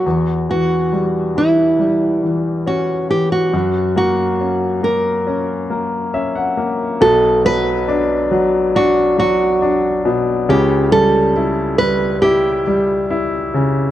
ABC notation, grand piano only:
X:1
M:4/4
L:1/16
Q:1/4=69
K:F#phr
V:1 name="Grand piano"
z16 | z12 e f3 | [K:Bm] z16 | z16 |]
V:2 name="Grand piano" clef=bass
E,,2 E,2 G,2 E,2 G,2 E,2 C2 E,2 | F,,2 ^A,2 C2 A,2 C2 A,2 C2 A,2 | [K:Bm] [B,,,B,,]2 F,2 D2 F,2 D2 F,2 D2 B,,2 | [C,,C,]2 G,2 E2 G,2 E2 G,2 E2 C,2 |]